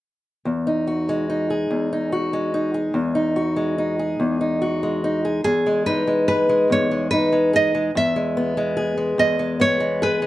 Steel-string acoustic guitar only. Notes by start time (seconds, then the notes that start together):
0.45 E2
0.67 D#4
0.87 F#4
1.09 G#3
1.30 D#4
1.50 G#4
1.71 E2
1.93 D#4
2.12 F#4
2.33 G#3
2.54 D#4
2.74 G#4
2.94 E2
3.15 D#4
3.36 F#4
3.56 G#3
3.78 D#4
3.99 G#4
4.20 E2
4.41 D#4
4.62 F#4
4.83 G#3
5.04 D#4
5.25 G#4
5.45 E2
5.66 G#3
5.87 D#4
6.07 G#3
6.28 G#4
6.49 G#3
6.70 E2
6.91 G#3
7.13 D#4
7.32 G#3
7.53 G#4
7.75 G#3
7.95 E2
8.16 G#3
8.37 B3
8.57 G#3
8.77 G#4
8.97 G#3
9.18 E2
9.39 G#3
9.60 B3
9.80 G#3
10.02 G#4
10.22 G#3